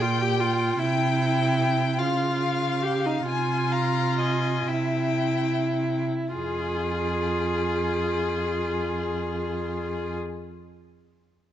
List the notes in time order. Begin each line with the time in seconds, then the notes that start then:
Already playing: A#2 G5
0.01 F4
0.22 G4
0.41 F4
0.79 C3 E4 G5
1.98 C#3 F4 F5
2.83 G4
3.06 D#4
3.27 C3 F4 G#5
3.72 F5 A#5
4.19 D#5 G#5
4.67 C3 E4 E5 G5
6.33 F2 F4 G#4